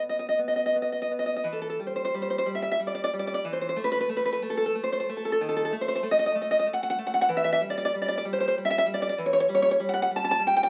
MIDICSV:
0, 0, Header, 1, 2, 480
1, 0, Start_track
1, 0, Key_signature, 1, "minor"
1, 0, Tempo, 724638
1, 970, Time_signature, 3, 2, 24, 8
1, 971, Tempo, 655022
1, 3851, Tempo, 625000
1, 7918, End_track
2, 0, Start_track
2, 0, Title_t, "Nylon-string guitar"
2, 0, Program_c, 0, 24
2, 0, Note_on_c, 0, 47, 49
2, 0, Note_on_c, 0, 59, 39
2, 62, Note_on_c, 0, 75, 58
2, 119, Note_off_c, 0, 75, 0
2, 127, Note_on_c, 0, 75, 63
2, 182, Note_off_c, 0, 75, 0
2, 190, Note_on_c, 0, 75, 67
2, 248, Note_off_c, 0, 59, 0
2, 253, Note_off_c, 0, 75, 0
2, 256, Note_on_c, 0, 59, 40
2, 316, Note_on_c, 0, 75, 62
2, 362, Note_off_c, 0, 75, 0
2, 370, Note_on_c, 0, 75, 64
2, 428, Note_off_c, 0, 75, 0
2, 436, Note_on_c, 0, 75, 68
2, 491, Note_off_c, 0, 59, 0
2, 496, Note_off_c, 0, 75, 0
2, 499, Note_on_c, 0, 59, 39
2, 543, Note_on_c, 0, 75, 58
2, 603, Note_off_c, 0, 75, 0
2, 611, Note_on_c, 0, 75, 60
2, 666, Note_off_c, 0, 75, 0
2, 674, Note_on_c, 0, 75, 68
2, 728, Note_off_c, 0, 59, 0
2, 735, Note_off_c, 0, 75, 0
2, 736, Note_on_c, 0, 59, 39
2, 788, Note_on_c, 0, 75, 56
2, 826, Note_off_c, 0, 75, 0
2, 834, Note_on_c, 0, 75, 60
2, 895, Note_off_c, 0, 75, 0
2, 903, Note_on_c, 0, 75, 60
2, 939, Note_off_c, 0, 47, 0
2, 952, Note_on_c, 0, 52, 59
2, 965, Note_off_c, 0, 75, 0
2, 970, Note_off_c, 0, 59, 0
2, 1014, Note_on_c, 0, 69, 61
2, 1072, Note_off_c, 0, 69, 0
2, 1081, Note_on_c, 0, 69, 72
2, 1130, Note_off_c, 0, 69, 0
2, 1139, Note_on_c, 0, 69, 68
2, 1200, Note_off_c, 0, 52, 0
2, 1209, Note_off_c, 0, 69, 0
2, 1212, Note_on_c, 0, 55, 44
2, 1264, Note_on_c, 0, 72, 62
2, 1322, Note_off_c, 0, 72, 0
2, 1331, Note_on_c, 0, 72, 69
2, 1387, Note_off_c, 0, 72, 0
2, 1396, Note_on_c, 0, 72, 83
2, 1459, Note_off_c, 0, 55, 0
2, 1459, Note_off_c, 0, 72, 0
2, 1467, Note_on_c, 0, 55, 52
2, 1523, Note_on_c, 0, 72, 68
2, 1574, Note_off_c, 0, 72, 0
2, 1583, Note_on_c, 0, 72, 77
2, 1634, Note_off_c, 0, 72, 0
2, 1643, Note_on_c, 0, 72, 76
2, 1688, Note_off_c, 0, 55, 0
2, 1697, Note_on_c, 0, 55, 50
2, 1702, Note_off_c, 0, 72, 0
2, 1764, Note_on_c, 0, 76, 73
2, 1810, Note_off_c, 0, 76, 0
2, 1818, Note_on_c, 0, 76, 73
2, 1877, Note_off_c, 0, 76, 0
2, 1886, Note_on_c, 0, 76, 75
2, 1936, Note_off_c, 0, 55, 0
2, 1944, Note_off_c, 0, 76, 0
2, 1945, Note_on_c, 0, 55, 46
2, 1999, Note_on_c, 0, 74, 74
2, 2047, Note_off_c, 0, 74, 0
2, 2056, Note_on_c, 0, 74, 94
2, 2114, Note_off_c, 0, 74, 0
2, 2123, Note_on_c, 0, 74, 96
2, 2183, Note_off_c, 0, 74, 0
2, 2184, Note_off_c, 0, 55, 0
2, 2193, Note_on_c, 0, 55, 50
2, 2236, Note_on_c, 0, 74, 77
2, 2286, Note_off_c, 0, 74, 0
2, 2294, Note_on_c, 0, 74, 89
2, 2336, Note_off_c, 0, 74, 0
2, 2345, Note_on_c, 0, 74, 86
2, 2406, Note_off_c, 0, 55, 0
2, 2414, Note_off_c, 0, 74, 0
2, 2421, Note_on_c, 0, 52, 62
2, 2481, Note_on_c, 0, 72, 70
2, 2535, Note_off_c, 0, 72, 0
2, 2544, Note_on_c, 0, 72, 68
2, 2592, Note_off_c, 0, 72, 0
2, 2600, Note_on_c, 0, 72, 67
2, 2651, Note_off_c, 0, 52, 0
2, 2653, Note_on_c, 0, 57, 52
2, 2659, Note_off_c, 0, 72, 0
2, 2712, Note_on_c, 0, 71, 81
2, 2759, Note_off_c, 0, 71, 0
2, 2767, Note_on_c, 0, 71, 82
2, 2823, Note_off_c, 0, 71, 0
2, 2831, Note_on_c, 0, 71, 86
2, 2885, Note_off_c, 0, 57, 0
2, 2890, Note_off_c, 0, 71, 0
2, 2894, Note_on_c, 0, 57, 52
2, 2949, Note_on_c, 0, 71, 77
2, 3005, Note_off_c, 0, 71, 0
2, 3014, Note_on_c, 0, 71, 83
2, 3058, Note_off_c, 0, 71, 0
2, 3066, Note_on_c, 0, 71, 82
2, 3128, Note_off_c, 0, 57, 0
2, 3128, Note_off_c, 0, 71, 0
2, 3137, Note_on_c, 0, 57, 53
2, 3193, Note_on_c, 0, 69, 71
2, 3239, Note_off_c, 0, 69, 0
2, 3247, Note_on_c, 0, 69, 80
2, 3301, Note_off_c, 0, 69, 0
2, 3310, Note_on_c, 0, 69, 88
2, 3369, Note_off_c, 0, 57, 0
2, 3371, Note_off_c, 0, 69, 0
2, 3378, Note_on_c, 0, 57, 51
2, 3440, Note_on_c, 0, 72, 76
2, 3496, Note_off_c, 0, 72, 0
2, 3505, Note_on_c, 0, 72, 88
2, 3551, Note_off_c, 0, 72, 0
2, 3560, Note_on_c, 0, 72, 85
2, 3615, Note_off_c, 0, 72, 0
2, 3618, Note_off_c, 0, 57, 0
2, 3627, Note_on_c, 0, 57, 47
2, 3684, Note_on_c, 0, 69, 66
2, 3735, Note_off_c, 0, 69, 0
2, 3744, Note_on_c, 0, 69, 75
2, 3788, Note_off_c, 0, 69, 0
2, 3796, Note_on_c, 0, 69, 83
2, 3834, Note_off_c, 0, 57, 0
2, 3852, Note_off_c, 0, 69, 0
2, 3861, Note_on_c, 0, 51, 66
2, 3920, Note_on_c, 0, 69, 70
2, 3971, Note_off_c, 0, 69, 0
2, 3980, Note_on_c, 0, 69, 69
2, 4036, Note_off_c, 0, 69, 0
2, 4045, Note_on_c, 0, 69, 73
2, 4094, Note_off_c, 0, 51, 0
2, 4101, Note_off_c, 0, 69, 0
2, 4103, Note_on_c, 0, 57, 51
2, 4170, Note_on_c, 0, 72, 73
2, 4214, Note_off_c, 0, 72, 0
2, 4224, Note_on_c, 0, 72, 85
2, 4270, Note_off_c, 0, 72, 0
2, 4280, Note_on_c, 0, 72, 87
2, 4327, Note_off_c, 0, 57, 0
2, 4336, Note_on_c, 0, 57, 54
2, 4338, Note_off_c, 0, 72, 0
2, 4401, Note_on_c, 0, 75, 90
2, 4451, Note_off_c, 0, 75, 0
2, 4460, Note_on_c, 0, 75, 96
2, 4506, Note_off_c, 0, 75, 0
2, 4515, Note_on_c, 0, 75, 98
2, 4575, Note_off_c, 0, 57, 0
2, 4575, Note_off_c, 0, 75, 0
2, 4584, Note_on_c, 0, 57, 59
2, 4633, Note_on_c, 0, 75, 86
2, 4694, Note_off_c, 0, 75, 0
2, 4705, Note_on_c, 0, 75, 99
2, 4760, Note_off_c, 0, 75, 0
2, 4770, Note_on_c, 0, 75, 96
2, 4814, Note_off_c, 0, 57, 0
2, 4822, Note_off_c, 0, 75, 0
2, 4824, Note_on_c, 0, 57, 51
2, 4878, Note_on_c, 0, 78, 87
2, 4936, Note_off_c, 0, 78, 0
2, 4952, Note_on_c, 0, 78, 101
2, 4996, Note_off_c, 0, 78, 0
2, 5005, Note_on_c, 0, 78, 111
2, 5059, Note_off_c, 0, 78, 0
2, 5062, Note_off_c, 0, 57, 0
2, 5071, Note_on_c, 0, 57, 50
2, 5134, Note_on_c, 0, 78, 86
2, 5180, Note_off_c, 0, 78, 0
2, 5189, Note_on_c, 0, 78, 86
2, 5238, Note_off_c, 0, 78, 0
2, 5247, Note_on_c, 0, 78, 102
2, 5278, Note_off_c, 0, 57, 0
2, 5300, Note_off_c, 0, 78, 0
2, 5303, Note_on_c, 0, 52, 73
2, 5365, Note_on_c, 0, 76, 82
2, 5413, Note_off_c, 0, 76, 0
2, 5422, Note_on_c, 0, 76, 94
2, 5477, Note_off_c, 0, 76, 0
2, 5486, Note_on_c, 0, 76, 95
2, 5536, Note_off_c, 0, 52, 0
2, 5543, Note_off_c, 0, 76, 0
2, 5551, Note_on_c, 0, 55, 54
2, 5621, Note_on_c, 0, 74, 87
2, 5669, Note_off_c, 0, 74, 0
2, 5678, Note_on_c, 0, 74, 103
2, 5726, Note_off_c, 0, 74, 0
2, 5735, Note_on_c, 0, 74, 99
2, 5790, Note_off_c, 0, 74, 0
2, 5800, Note_off_c, 0, 55, 0
2, 5809, Note_on_c, 0, 55, 58
2, 5864, Note_on_c, 0, 74, 95
2, 5905, Note_off_c, 0, 74, 0
2, 5914, Note_on_c, 0, 74, 96
2, 5969, Note_off_c, 0, 74, 0
2, 5985, Note_on_c, 0, 74, 105
2, 6033, Note_off_c, 0, 55, 0
2, 6033, Note_off_c, 0, 74, 0
2, 6042, Note_on_c, 0, 55, 61
2, 6103, Note_on_c, 0, 72, 89
2, 6151, Note_off_c, 0, 72, 0
2, 6160, Note_on_c, 0, 72, 90
2, 6208, Note_off_c, 0, 72, 0
2, 6217, Note_on_c, 0, 72, 103
2, 6266, Note_off_c, 0, 72, 0
2, 6284, Note_off_c, 0, 55, 0
2, 6294, Note_on_c, 0, 55, 57
2, 6350, Note_on_c, 0, 76, 96
2, 6383, Note_off_c, 0, 76, 0
2, 6392, Note_on_c, 0, 76, 111
2, 6441, Note_off_c, 0, 76, 0
2, 6451, Note_on_c, 0, 76, 106
2, 6501, Note_off_c, 0, 76, 0
2, 6502, Note_off_c, 0, 55, 0
2, 6511, Note_on_c, 0, 55, 61
2, 6572, Note_on_c, 0, 74, 83
2, 6620, Note_off_c, 0, 74, 0
2, 6633, Note_on_c, 0, 74, 98
2, 6680, Note_off_c, 0, 74, 0
2, 6689, Note_on_c, 0, 74, 94
2, 6717, Note_off_c, 0, 55, 0
2, 6739, Note_off_c, 0, 74, 0
2, 6758, Note_on_c, 0, 52, 73
2, 6817, Note_on_c, 0, 73, 94
2, 6864, Note_off_c, 0, 73, 0
2, 6872, Note_on_c, 0, 73, 103
2, 6918, Note_off_c, 0, 73, 0
2, 6927, Note_on_c, 0, 73, 97
2, 6977, Note_off_c, 0, 52, 0
2, 6979, Note_off_c, 0, 73, 0
2, 6994, Note_on_c, 0, 55, 65
2, 7038, Note_on_c, 0, 73, 87
2, 7088, Note_off_c, 0, 73, 0
2, 7097, Note_on_c, 0, 73, 101
2, 7153, Note_off_c, 0, 73, 0
2, 7164, Note_on_c, 0, 73, 105
2, 7216, Note_off_c, 0, 73, 0
2, 7222, Note_off_c, 0, 55, 0
2, 7231, Note_on_c, 0, 55, 60
2, 7300, Note_on_c, 0, 78, 89
2, 7328, Note_off_c, 0, 78, 0
2, 7337, Note_on_c, 0, 78, 108
2, 7392, Note_off_c, 0, 78, 0
2, 7403, Note_on_c, 0, 78, 104
2, 7455, Note_off_c, 0, 78, 0
2, 7459, Note_off_c, 0, 55, 0
2, 7468, Note_on_c, 0, 55, 57
2, 7510, Note_on_c, 0, 81, 99
2, 7565, Note_off_c, 0, 81, 0
2, 7574, Note_on_c, 0, 81, 100
2, 7616, Note_off_c, 0, 81, 0
2, 7625, Note_on_c, 0, 81, 117
2, 7679, Note_off_c, 0, 55, 0
2, 7687, Note_off_c, 0, 81, 0
2, 7688, Note_on_c, 0, 55, 60
2, 7746, Note_on_c, 0, 79, 106
2, 7808, Note_off_c, 0, 79, 0
2, 7821, Note_on_c, 0, 79, 117
2, 7862, Note_off_c, 0, 79, 0
2, 7871, Note_on_c, 0, 79, 117
2, 7918, Note_off_c, 0, 55, 0
2, 7918, Note_off_c, 0, 79, 0
2, 7918, End_track
0, 0, End_of_file